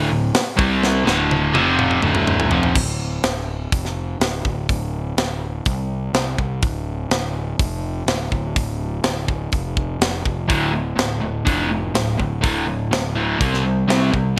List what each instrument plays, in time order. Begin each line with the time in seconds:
0.10 picked electric bass D1, overdriven electric guitar D2 A2
0.34 snare, open hi-hat
0.57 picked electric bass C2, overdriven electric guitar C3 G3 C4, kick
0.83 snare
1.05 picked electric bass D1, overdriven electric guitar D2 A2 D3, snare
1.31 high tom
1.54 picked electric bass F1, overdriven electric guitar F2 C3 F3, high tom
1.79 mid tom
1.91 mid tom
2.02 picked electric bass D1, overdriven electric guitar D2 A2 D3, mid tom
2.15 mid tom
2.27 mid tom
2.40 floor tom
2.50 picked electric bass F1, overdriven electric guitar F2 C3 F3, floor tom
2.63 floor tom
2.75 picked electric bass D1, kick, crash
3.23 picked electric bass D1, snare, open hi-hat
3.72 picked electric bass F1, kick, open hi-hat
3.85 snare
4.20 picked electric bass D1, snare, open hi-hat
4.45 picked electric bass D1, kick
4.69 picked electric bass D1, kick, open hi-hat
5.17 picked electric bass D1, snare, open hi-hat
5.65 picked electric bass C2, kick, open hi-hat
6.13 picked electric bass C2, snare, open hi-hat
6.38 picked electric bass C2, kick
6.62 picked electric bass D1, kick, open hi-hat
7.10 picked electric bass D1, snare, open hi-hat
7.59 picked electric bass F1, kick, open hi-hat
8.07 picked electric bass D1, snare, open hi-hat
8.32 picked electric bass D1, kick
8.56 picked electric bass D1, kick, open hi-hat
9.04 picked electric bass D1, snare, open hi-hat
9.28 kick
9.52 picked electric bass F1, kick, open hi-hat
9.77 kick
10.00 picked electric bass F1, snare, open hi-hat
10.25 picked electric bass F1, kick
10.48 picked electric bass D1, overdriven electric guitar D2 A2 D3, kick, open hi-hat
10.73 overdriven electric guitar D2 A2
10.96 picked electric bass D1, overdriven electric guitar D2 A2, snare, open hi-hat
11.21 overdriven electric guitar D2 A2
11.45 picked electric bass F1, overdriven electric guitar D2 A2 D3, kick, open hi-hat
11.71 overdriven electric guitar D2 A2
11.94 picked electric bass D1, overdriven electric guitar D2 A2, snare, open hi-hat
12.18 picked electric bass D1, overdriven electric guitar D2 A2, kick
12.41 picked electric bass D1, overdriven electric guitar D2 A2 D3, kick, open hi-hat
12.66 overdriven electric guitar D2 A2
12.91 picked electric bass D1, overdriven electric guitar D2 A2, snare, open hi-hat
13.15 overdriven electric guitar D2 A2 D3
13.39 picked electric bass C2, overdriven electric guitar C3 G3 C4, kick, open hi-hat
13.54 snare
13.65 overdriven electric guitar C3 G3
13.88 picked electric bass C2, overdriven electric guitar C3 G3 C4, snare, open hi-hat
14.12 picked electric bass C2, overdriven electric guitar C3 G3, kick